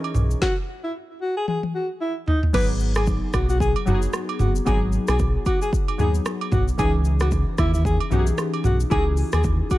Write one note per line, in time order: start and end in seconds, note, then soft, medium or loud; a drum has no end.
0.00 0.44 E3 medium
0.00 0.44 C#4 medium
0.00 0.44 D#4 medium
0.00 0.43 E4 medium
0.00 0.40 G#4 medium
0.00 0.44 G#4 medium
0.00 0.38 A#4 medium
0.00 0.40 C#5 medium
0.00 0.38 D#5 medium
0.00 0.40 C#6 medium
0.04 high agogo medium
0.15 0.35 B1 medium
0.15 mid tom medium
0.15 shaker medium
0.31 shaker medium
0.42 0.55 F#4 loud
0.42 kick loud
0.42 snare medium
0.84 0.93 E4 medium
1.22 1.35 F#4 medium
1.37 1.46 G#4 medium
1.48 1.61 G#4 medium
1.48 high tom medium
1.63 high tom medium
1.75 1.88 F#4 medium
2.01 2.14 E4 medium
2.28 2.41 D#4 medium
2.28 floor tom loud
2.43 floor tom medium
2.53 3.19 G#1 loud
2.53 3.53 F#3 medium
2.53 3.54 B3 medium
2.53 3.54 D#4 medium
2.53 3.55 G#4 medium
2.53 2.67 B4 loud
2.53 kick loud
2.53 crash medium
2.53 high agogo medium
2.53 shaker medium
2.80 shaker medium
2.95 3.06 G#4 medium
2.95 cross-stick loud
2.95 high agogo medium
2.95 shaker medium
3.07 kick medium
3.07 shaker medium
3.33 3.74 B1 medium
3.33 3.47 F#4 medium
3.33 kick loud
3.33 cross-stick loud
3.33 high agogo medium
3.33 shaker medium
3.50 3.59 F#4 medium
3.50 shaker medium
3.60 3.74 G#4 medium
3.60 kick medium
3.60 shaker medium
3.76 high agogo medium
3.86 4.07 F#1 medium
3.86 4.61 F#3 medium
3.86 4.62 B3 medium
3.86 4.62 D#4 medium
3.86 4.00 F#4 medium
3.86 3.95 F#4 medium
3.86 mid tom medium
3.86 shaker medium
3.94 4.66 G#4 medium
4.02 shaker medium
4.13 cross-stick medium
4.13 low woodblock medium
4.13 shaker medium
4.29 high agogo medium
4.39 4.60 F#1 medium
4.39 4.53 F#4 medium
4.39 mid tom medium
4.39 shaker medium
4.56 shaker medium
4.65 4.98 G#1 loud
4.65 5.66 F#3 medium
4.65 5.66 B3 medium
4.65 5.67 D#4 medium
4.65 4.74 F#4 medium
4.65 4.80 G#4 loud
4.65 kick loud
4.65 high agogo medium
4.65 shaker medium
4.74 5.70 G#4 medium
4.92 shaker medium
5.08 5.37 B1 medium
5.08 5.18 G#4 medium
5.08 cross-stick loud
5.08 high agogo medium
5.08 shaker medium
5.19 kick medium
5.19 shaker medium
5.46 5.59 F#4 medium
5.46 kick medium
5.46 high agogo medium
5.46 shaker medium
5.62 5.71 G#4 medium
5.62 shaker medium
5.73 kick loud
5.73 shaker medium
5.88 high agogo medium
5.98 6.19 D#2 medium
5.98 6.74 F#3 medium
5.98 6.74 B3 medium
5.98 6.74 D#4 medium
5.98 6.13 G#4 medium
5.98 6.75 G#4 medium
5.98 mid tom medium
5.98 shaker medium
6.15 shaker medium
6.26 cross-stick loud
6.26 low woodblock medium
6.26 shaker medium
6.41 high agogo medium
6.52 6.72 B1 medium
6.52 6.66 F#4 medium
6.52 kick loud
6.52 mid tom medium
6.52 shaker medium
6.68 shaker medium
6.78 7.44 C#2 loud
6.78 7.78 E3 medium
6.78 7.79 C#4 medium
6.78 7.79 D#4 medium
6.78 6.92 G#4 loud
6.78 7.79 G#4 medium
6.78 kick loud
6.78 high agogo medium
6.78 shaker medium
7.05 shaker soft
7.20 7.31 F#4 medium
7.20 cross-stick loud
7.20 high agogo medium
7.20 shaker medium
7.31 kick medium
7.31 shaker medium
7.58 7.99 D#2 loud
7.58 7.72 E4 medium
7.58 kick loud
7.58 cross-stick loud
7.58 high agogo medium
7.58 shaker medium
7.74 7.84 E4 medium
7.74 shaker medium
7.85 7.98 G#4 medium
7.85 kick loud
7.85 shaker medium
8.00 high agogo medium
8.10 8.32 B1 loud
8.10 8.86 E3 medium
8.10 8.86 C#4 medium
8.10 8.87 D#4 medium
8.10 8.25 F#4 medium
8.10 8.20 G4 medium
8.10 mid tom medium
8.10 shaker medium
8.19 8.90 G#4 medium
8.27 shaker medium
8.38 cross-stick medium
8.38 low woodblock medium
8.38 shaker medium
8.54 high agogo medium
8.64 8.85 B1 medium
8.64 8.78 F#4 medium
8.64 mid tom medium
8.64 shaker medium
8.80 shaker medium
8.90 9.23 C#2 loud
8.90 9.78 C#4 medium
8.90 9.78 D#4 medium
8.90 9.78 E4 medium
8.90 8.99 F#4 medium
8.90 9.05 G#4 loud
8.90 kick loud
8.90 high agogo medium
8.90 shaker medium
8.99 9.78 G#4 medium
9.17 open hi-hat soft
9.17 shaker medium
9.32 9.62 D#2 medium
9.32 9.43 G#4 medium
9.32 cross-stick loud
9.32 high agogo medium
9.32 shaker medium
9.44 kick medium
9.44 shaker medium
9.70 9.78 F#4 medium
9.70 kick medium
9.70 high agogo medium
9.70 shaker medium